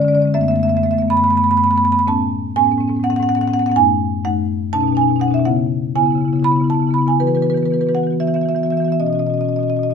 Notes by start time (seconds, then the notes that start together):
0.00 G#3 D5
0.05 D3 G#3 C#4 D5
0.12 D3 C#4 D5
0.17 G#3 C#4
0.22 D3 G#3 D5
0.27 C#4
0.34 F#2 A3 B3 E5
0.41 F#2 A3 B3 E5
0.48 A3 B3 E5
0.54 F#2 E5
0.59 A3 B3
0.63 F#2 E5
0.68 A3 B3 E5
0.74 F#2 A3 B3 E5
0.83 F#2 A3 B3 E5
0.91 F#2 A3 B3 E5
0.98 B3 E5
1.02 F#2 A3
1.08 F#2 A3 B3 B5
1.16 A3 B3 B5
1.22 F#2 B3 B5
1.28 A3 B5
1.33 F#2 A3 B3
1.37 B3 B5
1.42 F#2 A3 B5
1.49 F#2 A3 B3 B5
1.57 A3 B3 B5
1.63 F#2 A3 B5
1.67 B3 B5
1.73 F#2 A3 B3
1.78 B5
1.83 F#2 A3 B3 B5
1.92 F#2 A3 B3 B5
1.99 A3 B5
2.07 A2 B3 C#4 A5
2.56 A2 B3 C#4 G#5
2.63 A2 B3 C#4
2.71 B3 C#4
2.78 A2 B3 C#4
2.88 A2 B3 C#4
2.95 B3 C#4
3.00 A2 C#4
3.04 B3 F#5
3.09 A2 B3 C#4 F#5
3.16 A2 C#4 F#5
3.21 B3 F#5
3.28 A2 B3 C#4 F#5
3.35 B3 C#4 F#5
3.39 A2 C#4 F#5
3.45 B3 F#5
3.49 A2 C#4
3.54 B3 F#5
3.59 A2 B3 C#4 F#5
3.66 A2 B3 C#4 F#5
3.72 F#5
3.76 F#2 A3 D#4 G#5
4.24 F#2 A3 D#4 F#5
4.73 B2 C#4 D#4 A5
4.80 B2 C#4 D#4
4.87 C#4 D#4
4.93 B2 C#4 D#4
4.97 G#5
5.01 B2 C#4 D#4
5.08 B2 C#4 D#4
5.16 C#4 D#4
5.20 B2 D#4 F#5
5.28 B2 C#4 D#4
5.34 C#4 D#4 E5
5.40 B2
5.45 C#3 B3 E4 F#5
5.96 C#3 B3 E4 G#5
6.03 C#3 B3 E4
6.10 B3 E4
6.15 C#3 E4
6.21 C#3 B3
6.25 B3 E4
6.33 C#3 B3 E4
6.40 C#3 E4
6.44 B3 B5
6.48 C#3 B3 E4
6.56 B3 E4
6.61 C#3 E4
6.68 C#3 B3 A5
6.72 B3 E4
6.79 C#3 B3 E4
6.87 C#3 B3 E4
6.94 E4 B5
6.98 C#3 B3 E4
7.06 C#3 B3 E4 G#5
7.20 E3 B3 F#4 B4
7.27 E3 B3 F#4 B4
7.35 E3 B3 F#4 B4
7.42 B3 F#4 B4
7.46 E3 B4
7.51 E3 B3 F#4
7.57 F#4 B4
7.62 E3 B3 F#4 B4
7.71 E3 B3 F#4 B4
7.79 E3 B3 F#4 B4
7.87 E3 B3 F#4 B4
7.95 B3 F#4 F#5
7.99 E3
8.03 E3 B3 F#4
8.10 B3 F#4
8.20 E3 B3 F#4 E5
8.27 E3 B3 F#4 E5
8.34 E3 B3 F#4 E5
8.41 B3 F#4 E5
8.45 E3 E5
8.50 B3 F#4
8.55 E3 F#4 E5
8.59 B3
8.63 E3 B3 F#4 E5
8.71 E3 B3 F#4 E5
8.77 E3 F#4 E5
8.82 B3 F#4 E5
8.88 E3 B3 E5
8.93 F#4
9.00 B2 C#4 F#4 D#5
9.07 B2 C#4 F#4 D#5
9.13 C#4 F#4 D#5
9.19 B2 C#4 F#4 D#5
9.27 B2 C#4 F#4 D#5
9.34 C#4 F#4 D#5
9.39 B2 D#5
9.44 C#4 F#4
9.49 B2 D#5
9.53 C#4 F#4 D#5
9.59 B2 C#4 F#4
9.63 D#5
9.68 B2 C#4 F#4 D#5
9.75 C#4 F#4 D#5
9.79 B2 C#4
9.83 F#4 D#5
9.90 B2 C#4 D#5